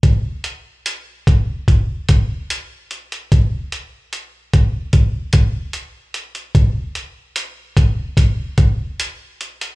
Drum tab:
HH |x-x-x-x-x-x-x-xx|x-x-x-x-x-x-x-xx|x-x-x-x-x-x-x-xx|
BD |o-----o-o-o-----|o-----o-o-o-----|o-----o-o-o-----|